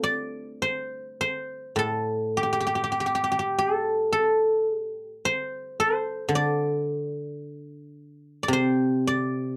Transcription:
guzheng
Already playing: A3 C4 D4 F4 G4 A4 C5
0.03 D5
0.62 C5
1.21 C5
1.76 A2 A4
2.37 G4
2.43 G4
2.53 G4
2.60 G4
2.67 G4
2.75 G4
2.84 G4
2.92 G4
3.00 G4
3.06 G4
3.15 G4
3.24 G4
3.32 G4
3.39 G4
3.59 A4
4.12 A4
4.67 G#4
4.80 G4
5.25 C5
5.80 C5
6.29 D3
6.35 D5
8.43 D5
8.48 C3
8.53 C5
9.07 D5

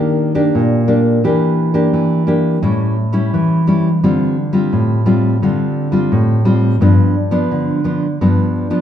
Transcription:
nylon-string guitar
Already playing: D#3 A#3 D4 G4
0.35 A#3 D4 G4
0.55 A#2
0.88 A#3 D4 G4
1.24 E3 A#3 D4 G4
1.74 A#3 D4 G4
1.93 E3
2.27 A#3 D4 G4
2.62 A2 G3 C#4 E4
3.13 G3 C#4 E4
3.34 E3
3.67 G3 C#4 E4
4.03 D3 G3 C4 F4
4.53 G3 C4 F4
4.73 A2
5.06 G3 C4 F4
5.42 D3 G3 C4 F4
5.92 G3 C4 F4
6.12 A2
6.45 G3 C4 F4
6.81 G2 F3 B3 D4
7.31 F3 B3 D4
7.51 D3
7.84 F3 B3 D4
8.21 G2 F3 B3 D4
8.70 F3 B3 D4

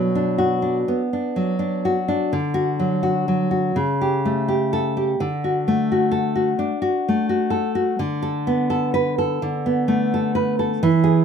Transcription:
nylon-string guitar
Already playing: B2 F#3 D4
0.15 D4
0.38 F#4
0.62 D4
0.88 B3
1.13 D4
1.36 F#3
1.59 D4
1.85 F#4
2.08 D4
2.33 D3
2.54 F#4
2.80 F#3
3.03 F#4
3.28 F#3
3.51 F#4
3.76 C#3
4.01 G4
4.25 A3
4.48 G4
4.73 A4
4.97 G4
5.20 D3
5.44 F#4
5.68 A3
5.92 F#4
6.12 A4
6.36 F#4
6.59 D4
6.82 F#4
7.09 A3
7.29 F#4
7.50 A4
7.75 F#4
7.99 D3
8.22 A4
8.47 B3
8.70 A4
8.94 B4
9.18 A4
9.42 D3
9.66 B3
9.88 A3
10.14 A4
10.35 B4
10.59 A4
10.83 E3
11.04 G#4

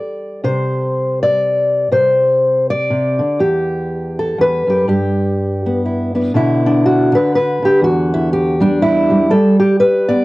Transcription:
steel-string acoustic guitar
Already playing: G3 D5
0.44 C3 C5
1.23 D5
1.91 C3 C5
2.70 D5
2.90 C3
3.19 D3
3.39 E2 G4
4.19 A4
4.38 E2 B4
4.67 F#2 G4
4.88 G2 G4
5.66 B3
5.86 E4
6.15 B3 D4 E4
6.34 B2 D3 D4 E4
6.66 D4
6.86 F#4
7.12 D3 B4
7.35 B4
7.62 D3 G4
7.81 E2 F#4
8.14 E4
8.33 G4
8.60 G3 D4
8.82 E4
9.10 G3
9.30 G3 A4
9.60 G4
9.80 B4
10.09 B3 D5

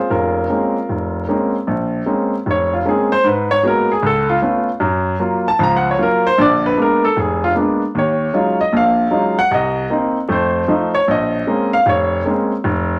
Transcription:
grand piano
Already playing: F4 G#4 C5
0.10 F1 C#4 F4 A#4
0.49 G#3 A#3 C4 C#4
0.89 F1
1.29 G#3 A#3 C4 C#4
1.67 A#1
2.06 G#3 A#3 C4 C#4
2.46 F1
2.51 C#5
2.73 F4
2.85 G#3 A#3 C4 C#4 G#4
3.12 C5
3.24 G#2 B4
3.51 C#5
3.63 G#3 A#3 B3 F#4
3.67 A#4
3.92 G#4
4.03 C#2 A4
4.29 F4
4.42 A3 B3 C#4 F4
4.80 F#2
5.20 F#3 A#3 F4
5.48 A5
5.59 C#2 F3
5.63 A#5
5.77 F#5
5.91 C#5
5.98 F#3 A#3 F4
6.03 A#4
6.27 C5
6.38 A#1 D3 D5
6.66 B4
6.77 G#3 A#3 B3 D4
6.82 A#4
7.05 A4
7.17 F1 G#4
7.44 F4
7.55 G#3 A#3 B3 D4
7.95 D#2 C#5
8.34 F#3 G#3 C#4 D#4 F4
8.61 D#5
8.73 A#1 A#2
8.77 F5
9.11 F#3 G#3 C#4 D#4 F4
9.39 F#5
9.51 C2 D#5
9.90 A#3 C4 D#4
10.28 F2 A3 C5
10.68 F3 A3 D#4
10.95 C#5
11.08 A#1 D#5
11.47 G#3 A#3 C4 C#4
11.73 F5
11.86 F1 C#5
12.25 G#3 A#3 C4 C#4
12.64 F1

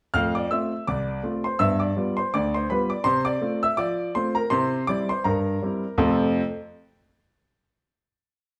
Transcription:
grand piano
0.14 F2 A3 F5 F6
0.35 D5 D6
0.51 A3 C4 F4 E5 E6
0.87 C2 D5 D6
1.23 A3 C4 F4
1.44 C5 C6
1.59 G2 B3 E5 E6
1.80 D5 D6
1.96 G3 B3 F4
2.17 C5 C6
2.34 D2 D5 D6
2.54 C5 C6
2.70 G3 B3 F4 B4 B5
2.90 D5 D6
3.04 C3 C5 C6
3.25 D5 D6
3.41 A3 C4 F4
3.63 E5 E6
3.77 F3 D5 D6
4.15 A3 C4 F4 C5 C6
4.35 A#4 A#5
4.50 C3 E4 C5 C6
4.87 G3 C4 E4 D5 D6
5.09 C5 C6
5.24 G2 A#4 A#5
5.62 G3 C4 E4
5.98 F2 C3 A3 C4 F4 A4 A5

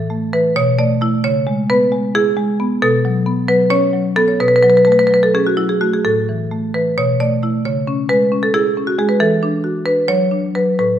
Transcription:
marimba
Already playing: A2 E3 A4
0.10 A3
0.33 E3 B4
0.56 B2 C#5
0.78 A3 D5
1.01 A3 E4
1.24 C#3 C#5
1.47 G#3
1.70 B3 B4
1.92 G#3
2.15 E4 G#4
2.37 G#3
2.60 B3
2.82 B2 A4
3.05 F#3
3.26 B3
3.48 F#3 B4
3.70 C#4 C#5
3.93 F#3
4.16 B3 A4
4.28 C#5
4.40 B2 B4
4.48 B4
4.56 B4
4.63 F#3 B4
4.70 B4
4.77 B4
4.85 A3 B4
4.92 B4
4.99 B4
5.07 F#3 B4
5.14 B4
5.23 A4
5.34 C#4 G#4
5.47 F#4
5.57 F#3 E4
5.69 G#4
5.81 A3 F#4
5.94 G#4
6.05 A2 A4
6.29 E3
6.52 A3
6.74 E3 B4
6.98 B2 C#5
7.20 A3 D5
7.43 A3 E4
7.65 C#3 C#5
7.87 C#4
8.09 G#3 B4
8.32 C#4
8.43 A4
8.54 E4 G#4
8.77 C#4
8.87 F#4
8.99 G#3 G#4
9.09 B4
9.20 E3 A4
9.43 D4
9.64 F#4
9.86 D4 B4
10.08 F#3 C#5
10.31 D4
10.55 F#3 B4
10.79 A2 B4

